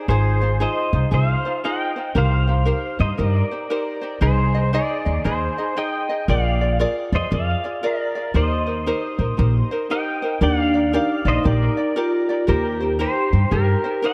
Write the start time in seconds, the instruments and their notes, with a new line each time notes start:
0.08 upright bass G#1, ukulele D#4 F4 G#4 C5, pedal steel guitar G#4 C5
0.41 ukulele D#4 F4 C5
0.60 ukulele D#4 F4 G#4 C5, pedal steel guitar C5 D#5
0.93 upright bass C2, ukulele D#4 F4 C5
1.11 upright bass C2, ukulele D#4 F4 G#4 C5, pedal steel guitar C5 F5
1.45 ukulele D#4 F4 C5
1.64 ukulele D#4 F4 G#4 C5, pedal steel guitar D#5 G5
1.96 ukulele D#4 F4 C5
2.15 upright bass C2, ukulele D#4 G4 A#4 C5, pedal steel guitar C5 F5
2.47 ukulele D#4 G4 C5
2.65 ukulele D#4 G4 A#4 C5
2.99 upright bass G2, ukulele D#4 G4 C5, pedal steel guitar C5 D#5
3.17 upright bass G2, ukulele D#4 G4 A#4 C5, pedal steel guitar A#4 D#5
3.29 pedal steel guitar D5
3.51 ukulele D#4 G4 C5
3.70 ukulele D#4 G4 A#4 C5
4.01 ukulele D#4 G4 C5
4.21 upright bass C2, ukulele D#4 G#4 C5 D#5, pedal steel guitar G#4 C5
4.54 ukulele D#4 G#4 D#5
4.73 ukulele D#4 G#4 C5 D#5, pedal steel guitar G#4 D5
5.05 upright bass D#2, ukulele D#4 G#4 D#5
5.24 upright bass D#2, ukulele D#4 G#4 C5 D#5, pedal steel guitar G#4 C5
5.58 ukulele D#4 G#4 D#5
5.76 ukulele D#4 G#4 C5 D#5, pedal steel guitar D#5 G5
6.09 ukulele D#4 G#4 D#5
6.28 upright bass A#1, ukulele F4 G#4 A#4 D5, pedal steel guitar D5 F5
6.61 ukulele F4 G#4 D5
6.79 ukulele F4 G#4 A#4 D5
7.12 upright bass F2, ukulele F4 G#4 D5, pedal steel guitar C5 D#5
7.31 upright bass F2, ukulele F4 G#4 A#4 D5, pedal steel guitar D5 F5
7.64 ukulele F4 G#4 D5
7.83 ukulele F4 G#4 A#4 D5, pedal steel guitar A#4 D5
8.15 ukulele F4 G#4 D5
8.34 upright bass D#2, ukulele D#4 G4 A#4 C5, pedal steel guitar C5 D#5
8.66 ukulele D#4 A#4 C5
8.86 ukulele D#4 G4 A#4 C5
9.19 upright bass A#1, ukulele D#4 A#4 C5
9.37 upright bass A#1, ukulele D#4 G4 A#4 C5
9.71 ukulele D#4 A#4 C5
9.90 ukulele D#4 G4 A#4 C5, pedal steel guitar D#5 G5
10.22 ukulele D#4 A#4 C5
10.41 upright bass D#2, vibraphone D4, ukulele D#4 G4 A#4 D5, pedal steel guitar D5 F#5
10.60 pedal steel guitar F5
10.74 ukulele D#4 G4 D5
10.91 vibraphone D#4, ukulele D#4 G4 A#4 D5
11.25 upright bass A#1, ukulele D#4 G4 D5, pedal steel guitar C5 D#5
11.44 upright bass A#1, ukulele D#4 G4 A#4 D5, pedal steel guitar A#4 D5
11.77 ukulele D#4 G4 D5
11.96 ukulele D#4 G4 A#4 D5, vibraphone F4
12.29 ukulele D#4 G4 D5
12.47 upright bass D#2, ukulele D#4 G4 A#4 C5, vibraphone G4, pedal steel guitar G4 A#4
12.81 ukulele D#4 G4 C5
12.99 ukulele D#4 G4 A#4 C5, pedal steel guitar G4 C5
13.33 upright bass G2, ukulele D#4 G4 C5
13.51 upright bass G2, ukulele D#4 G4 A#4 C5, pedal steel guitar G4 A#4
13.84 ukulele D#4 G4 C5
14.02 ukulele D#4 G4 A#4 C5, pedal steel guitar D#5 G5